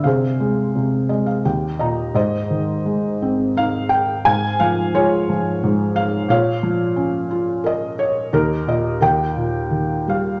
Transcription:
0.04 0.74 C3 medium
0.04 1.41 G#4 soft
0.04 1.41 C5 soft
0.04 1.25 F5 medium
0.40 1.08 G#3 soft
0.75 1.43 C3 soft
1.09 1.44 G#3 soft
1.09 1.26 D#5 medium
1.26 1.43 F5 soft
1.45 2.14 D#2 medium
1.45 1.78 G5 medium
1.79 2.15 A#2 soft
1.79 2.14 D#5 medium
1.79 2.13 A#5 soft
2.14 4.20 G#2 medium
2.14 3.52 C5 medium
2.14 3.59 D#5 medium
2.50 3.86 D#3 soft
2.86 4.21 G#3 soft
3.22 4.22 C4 soft
3.57 4.23 D#4 soft
3.57 3.89 F5 medium
3.89 4.25 G5 medium
4.25 5.62 G#2 medium
4.25 4.58 F5 medium
4.25 4.57 G#5 loud
4.60 5.28 F3 soft
4.60 4.91 F5 medium
4.95 6.26 G#3 soft
4.95 5.92 F4 medium
4.95 5.92 C#5 medium
5.29 6.27 F3 soft
5.63 6.28 G#2 medium
5.96 6.29 F5 medium
6.28 8.29 A#2 medium
6.28 7.61 C#5 medium
6.28 7.69 F5 medium
6.63 7.95 F3 medium
6.96 8.29 C#4 medium
7.31 8.30 F4 medium
7.64 8.30 A#4 medium
7.64 7.97 D#5 medium
7.99 8.31 C#5 medium
8.33 8.99 D#2 medium
8.33 8.97 D#4 medium
8.33 8.69 A#4 medium
8.67 9.00 A#2 medium
8.67 9.00 D#5 medium
9.01 10.40 D#2 medium
9.01 10.04 A#4 medium
9.01 10.12 G5 medium
9.36 10.40 A#2 soft
9.71 10.40 D#3 soft
10.08 10.40 G3 soft
10.08 10.40 F5 medium

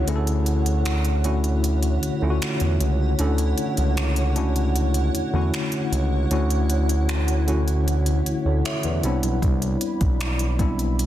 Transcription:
0.00 0.08 D3 medium
0.00 0.08 A3 medium
0.00 0.08 C#4 medium
0.00 3.19 D4 medium
0.00 0.09 E4 medium
0.00 11.06 E4 medium
0.00 1.26 F#4 medium
0.00 9.05 G4 medium
0.00 0.16 A4 medium
0.00 9.00 C#5 medium
0.00 8.99 F#5 medium
0.00 downlifter medium
0.07 1.98 D2 loud
0.07 1.10 D3 medium
0.07 1.10 A3 medium
0.07 1.10 C#4 medium
0.07 1.11 E4 medium
0.07 0.15 G#4 medium
0.07 closed hi-hat medium
0.16 1.14 A4 medium
0.27 closed hi-hat soft
0.46 closed hi-hat medium
0.66 closed hi-hat soft
0.85 finger snap loud
0.85 closed hi-hat medium
1.05 closed hi-hat medium
1.24 2.10 D3 medium
1.24 2.10 A3 medium
1.24 2.10 C#4 medium
1.24 2.10 E4 medium
1.24 2.11 F#4 medium
1.24 closed hi-hat soft
1.44 closed hi-hat soft
1.64 closed hi-hat medium
1.83 closed hi-hat medium
2.02 2.10 D2 soft
2.02 closed hi-hat medium
2.22 2.39 D2 medium
2.22 3.07 D3 medium
2.22 3.07 A3 medium
2.22 3.08 C#4 medium
2.22 3.08 E4 medium
2.22 2.29 F4 medium
2.30 3.11 F#4 medium
2.42 finger snap loud
2.42 closed hi-hat medium
2.60 2.78 E2 medium
2.60 closed hi-hat soft
2.80 3.15 C#2 medium
2.80 closed hi-hat medium
3.19 3.54 D2 loud
3.19 4.22 A3 medium
3.19 4.22 C#4 medium
3.19 4.22 D4 medium
3.19 4.22 E4 medium
3.19 4.23 A4 medium
3.19 closed hi-hat medium
3.38 closed hi-hat soft
3.58 closed hi-hat medium
3.77 5.10 C#2 medium
3.77 closed hi-hat medium
3.97 finger snap loud
3.97 closed hi-hat medium
4.16 closed hi-hat medium
4.36 5.22 A3 medium
4.36 5.22 C#4 medium
4.36 5.21 D4 medium
4.36 5.22 E4 medium
4.36 5.22 F#4 medium
4.36 closed hi-hat soft
4.56 closed hi-hat soft
4.76 closed hi-hat medium
4.94 closed hi-hat medium
5.14 5.22 E2 soft
5.14 closed hi-hat medium
5.33 5.51 E2 medium
5.33 6.19 D3 medium
5.33 6.19 A3 medium
5.33 6.19 C#4 medium
5.33 6.20 E4 medium
5.33 6.20 F#4 medium
5.54 finger snap loud
5.54 closed hi-hat medium
5.72 closed hi-hat medium
5.92 6.26 C#2 medium
5.92 closed hi-hat medium
6.31 8.21 D2 loud
6.31 7.33 D3 medium
6.31 7.34 A3 medium
6.31 7.34 C#4 medium
6.31 7.34 E4 medium
6.31 7.34 F#4 medium
6.31 closed hi-hat medium
6.50 closed hi-hat soft
6.70 closed hi-hat medium
6.89 closed hi-hat soft
7.09 finger snap loud
7.09 closed hi-hat medium
7.28 closed hi-hat medium
7.47 8.33 D3 medium
7.47 8.33 A3 medium
7.47 8.33 C#4 medium
7.47 8.34 E4 medium
7.47 8.34 F#4 medium
7.47 closed hi-hat soft
7.68 closed hi-hat soft
7.88 closed hi-hat medium
8.06 closed hi-hat medium
8.26 8.33 D2 soft
8.26 closed hi-hat medium
8.45 8.62 D2 medium
8.45 8.64 A4 medium
8.45 8.64 C#5 medium
8.65 8.84 C#5 medium
8.65 8.83 E5 medium
8.65 finger snap loud
8.65 closed hi-hat medium
8.83 9.01 E2 medium
8.83 9.22 B4 medium
8.83 9.22 D5 medium
8.83 closed hi-hat soft
9.03 9.21 C2 medium
9.03 10.41 G3 medium
9.03 10.41 B3 medium
9.03 10.40 C4 medium
9.03 10.41 D4 medium
9.03 10.41 E4 medium
9.03 11.06 D5 medium
9.03 11.06 B5 medium
9.03 closed hi-hat medium
9.23 9.40 B1 medium
9.23 closed hi-hat medium
9.42 9.77 C2 loud
9.42 kick loud
9.42 closed hi-hat medium
9.62 closed hi-hat soft
9.81 closed hi-hat medium
10.01 11.06 B1 medium
10.01 kick medium
10.01 closed hi-hat soft
10.21 finger snap loud
10.21 closed hi-hat medium
10.39 closed hi-hat medium
10.59 11.06 G3 medium
10.59 11.06 B3 medium
10.59 11.06 C4 medium
10.59 11.06 D4 medium
10.59 11.06 E4 loud
10.59 kick medium
10.59 closed hi-hat soft
10.79 closed hi-hat medium
10.99 closed hi-hat medium

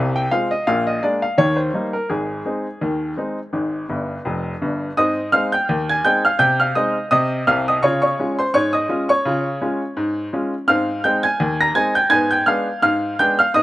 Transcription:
0.00 0.26 C2 medium
0.00 0.26 C3 medium
0.16 0.32 G5 medium
0.31 0.51 G#3 soft
0.31 0.51 C4 soft
0.31 0.52 F4 soft
0.31 0.51 F5 medium
0.51 0.67 D#5 medium
0.67 0.97 A#1 medium
0.67 0.98 A#2 medium
0.67 0.86 F5 medium
0.87 1.03 D#5 medium
1.03 1.23 G#3 soft
1.03 1.23 A#3 soft
1.03 1.23 D4 soft
1.03 1.22 D5 medium
1.22 1.39 F5 medium
1.38 1.69 D#2 medium
1.38 1.69 D#3 medium
1.38 1.58 C#5 medium
1.57 1.86 C5 medium
1.74 1.94 G3 soft
1.74 1.94 A#3 soft
1.74 1.94 D#4 soft
1.93 2.10 A#4 medium
2.10 2.41 G#1 soft
2.10 2.41 G#2 medium
2.10 4.11 G#4 medium
2.45 2.65 G#3 soft
2.45 2.66 C4 soft
2.45 2.66 D#4 soft
2.81 3.12 D#2 medium
2.81 3.13 D#3 medium
3.17 3.37 G#3 soft
3.17 3.38 C4 soft
3.17 3.38 D#4 soft
3.53 3.84 G#1 soft
3.53 3.84 G#2 medium
3.89 4.17 G1 soft
3.89 4.17 G2 soft
4.25 4.53 F1 medium
4.25 4.52 F2 medium
4.62 4.89 G1 soft
4.62 4.89 G2 medium
4.97 5.28 G#2 medium
4.97 5.19 C4 soft
4.97 5.31 D#5 medium
4.97 5.26 D#6 medium
5.32 5.53 G#3 soft
5.32 5.53 C4 soft
5.32 5.53 D#4 soft
5.32 5.52 F5 medium
5.32 5.52 F6 medium
5.52 5.87 G5 medium
5.52 5.87 G6 medium
5.69 6.00 D#2 medium
5.89 6.05 G#5 medium
5.89 6.05 G#6 medium
6.05 6.24 G#3 soft
6.05 6.25 C4 soft
6.05 6.25 D#4 soft
6.05 6.23 G5 medium
6.05 6.24 G6 medium
6.25 6.40 F5 medium
6.25 6.41 F6 medium
6.39 6.70 C3 medium
6.39 6.58 G5 medium
6.39 6.59 G6 medium
6.60 6.76 F5 medium
6.60 6.76 F6 medium
6.75 6.96 G#3 soft
6.75 6.95 C4 soft
6.75 6.96 D#4 soft
6.75 7.10 D#5 medium
6.75 7.04 D#6 medium
7.11 7.42 C3 medium
7.11 7.45 D#5 medium
7.11 7.40 D#6 medium
7.47 7.76 C2 medium
7.47 7.76 C3 medium
7.47 7.66 F5 medium
7.47 7.67 F6 medium
7.68 7.83 D#5 medium
7.68 7.84 D#6 medium
7.83 8.13 C#3 medium
7.83 8.04 F4 soft
7.83 8.02 C#5 medium
7.83 8.00 C#6 medium
8.02 8.36 C#5 medium
8.02 8.36 C#6 medium
8.19 8.39 G#3 soft
8.19 8.39 C#4 soft
8.19 8.40 F4 soft
8.39 8.54 C5 medium
8.39 8.55 C6 medium
8.54 8.85 G#2 medium
8.54 8.73 C#5 medium
8.54 8.74 C#6 loud
8.73 9.07 D#5 medium
8.73 9.02 D#6 medium
8.89 9.09 G#3 soft
8.89 9.10 C#4 soft
8.89 9.09 F4 medium
9.09 10.65 C#5 medium
9.09 10.37 C#6 medium
9.25 9.56 C#3 medium
9.25 9.47 F4 medium
9.62 9.81 G#3 soft
9.62 9.81 C#4 soft
9.62 9.82 F4 soft
9.97 10.27 G#2 medium
10.33 10.53 G#3 soft
10.33 10.53 C#4 soft
10.33 10.53 F4 soft
10.68 10.99 G#2 medium
10.68 10.89 C4 soft
10.68 11.02 F5 medium
10.68 11.02 F6 loud
11.04 11.24 G#3 soft
11.04 11.24 C4 soft
11.04 11.24 D#4 soft
11.04 11.23 G5 medium
11.04 11.24 G6 medium
11.23 11.57 G#5 medium
11.23 11.57 G#6 medium
11.40 11.70 D#2 medium
11.61 11.76 A#5 medium
11.61 11.76 A#6 medium
11.75 11.95 G#3 soft
11.75 11.95 C4 soft
11.75 11.96 D#4 soft
11.75 11.94 G#5 medium
11.75 11.95 G#6 medium
11.95 12.11 G5 medium
11.95 12.12 G6 medium
12.10 12.41 G#2 medium
12.10 12.32 B3 medium
12.10 12.29 G#5 medium
12.10 12.30 G#6 loud
12.31 12.47 G5 medium
12.31 12.47 G6 medium
12.46 12.67 G#3 soft
12.46 12.67 B3 soft
12.46 12.67 D4 soft
12.46 12.81 F5 medium
12.46 12.81 F6 medium
12.82 13.13 G#2 medium
12.82 13.16 F5 medium
12.82 13.11 F6 medium
13.19 13.39 G#3 soft
13.19 13.39 B3 soft
13.19 13.39 D4 soft
13.19 13.37 G5 medium
13.19 13.38 G6 medium
13.39 13.54 F5 medium
13.39 13.55 F6 medium
13.54 13.63 G#2 medium
13.54 13.63 C4 soft
13.54 13.63 D#5 medium
13.54 13.63 D#6 medium

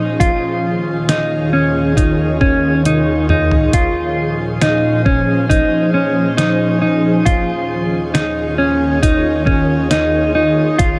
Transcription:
0.00 0.17 A#2 medium
0.00 0.17 F3 medium
0.00 0.17 C#4 medium
0.00 0.20 D#4 medium
0.00 0.17 G#4 medium
0.00 0.17 C5 medium
0.20 3.70 D#2 medium
0.20 3.70 D#3 medium
0.20 1.08 F4 medium
0.20 3.70 F4 medium
0.20 10.99 G#4 medium
0.20 3.70 C#5 medium
0.20 kick medium
0.20 closed hi-hat medium
1.09 1.53 D#4 medium
1.09 snare medium
1.09 closed hi-hat medium
1.53 1.96 C#4 medium
1.97 2.40 D#4 medium
1.97 kick medium
1.97 closed hi-hat medium
2.41 2.85 C#4 medium
2.41 kick medium
2.85 3.29 D#4 medium
2.85 closed hi-hat medium
2.85 high tom soft
3.29 3.74 D#4 medium
3.29 mid tom medium
3.51 floor tom medium
3.73 7.24 A#2 medium
3.73 7.24 F3 medium
3.73 7.24 C#4 medium
3.73 4.62 F4 medium
3.73 7.23 C5 medium
3.73 kick medium
3.73 closed hi-hat medium
4.62 5.05 D#4 medium
4.62 snare loud
4.62 closed hi-hat medium
5.05 5.49 C#4 medium
5.05 kick medium
5.49 5.94 D#4 medium
5.49 kick medium
5.49 closed hi-hat medium
5.94 6.37 C#4 medium
6.37 6.80 D#4 medium
6.37 snare medium
6.37 closed hi-hat medium
6.82 7.26 D#4 medium
7.25 10.76 D#2 medium
7.25 10.77 D#3 medium
7.25 8.14 F4 medium
7.25 10.77 F4 medium
7.25 10.77 C#5 medium
7.25 kick medium
7.25 closed hi-hat medium
8.14 8.58 D#4 medium
8.14 snare loud
8.14 closed hi-hat medium
8.58 9.02 C#4 medium
9.03 9.46 D#4 medium
9.03 kick medium
9.03 closed hi-hat medium
9.46 9.91 C#4 medium
9.46 kick medium
9.91 10.34 D#4 medium
9.91 snare medium
9.91 closed hi-hat medium
10.35 10.79 D#4 medium
10.78 10.99 F4 medium
10.78 kick medium
10.78 closed hi-hat medium

